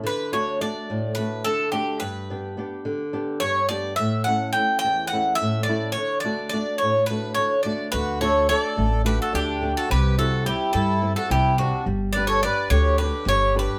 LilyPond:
<<
  \new Staff \with { instrumentName = "Bouzouki" } { \time 7/8 \key d \major \tempo 4 = 107 b'8 cis''8 d''4 b'8 a'8 g'8 | b'2~ b'8 cis''8 d''8 | e''8 fis''8 g''8 g''8 fis''8 e''8 d''8 | cis''8 d''8 d''8 cis''8 b'8 cis''8 d''8 |
b'8 cis''8 d''4 b'16 a'16 g'8. a'16 | b'8 a'8 g'8 a'8. a'16 g'8 fis'8 | r8 d''16 cis''16 d''8 cis''8 b'8 cis''8 b'8 | }
  \new Staff \with { instrumentName = "Accordion" } { \time 7/8 \key d \major r2. r8 | r2. r8 | r2. r8 | r2. r8 |
fis'8 a'8 a'4 g'16 fis'16 d'8. fis'16 | g'8 fis'8 e'8 e'8. fis'16 e'8 d'8 | r8 b'16 a'16 b'8 g'8 g'8 g'8 g'8 | }
  \new Staff \with { instrumentName = "Nylon-string guitar" } { \time 7/8 \key d \major d8 <a d' fis'>8 <a d' fis'>8 a,8 <a d' fis'>8 d8 <a d' fis'>8 | g,8 <b d' g'>8 <b d' g'>8 d8 <b d' g'>8 g,8 <b d' g'>8 | a,8 <a cis' e'>8 <a cis' e'>8 e,8 <a cis' e'>8 a,8 <a cis' e'>8 | d8 <a d' fis'>8 <a d' fis'>8 a,8 <a d' fis'>8 d8 <a d' fis'>8 |
d8 <a d' fis'>8 <a d' fis'>8 a8 <a d' fis'>8 d8 <a d' fis'>8 | c8 <g c' e'>8 <g c' e'>8 g8 <g c' e'>8 c8 <g c' e'>8 | g8 <d' g' b'>8 <d' g' b'>8 d8 <d' g' b'>8 g8 <d' g' b'>8 | }
  \new Staff \with { instrumentName = "Upright bass" } { \clef bass \time 7/8 \key d \major r2. r8 | r2. r8 | r2. r8 | r2. r8 |
d,4. a,,4 d,4 | c,4. g,4 c,4 | g,,4. d,4 g,,4 | }
>>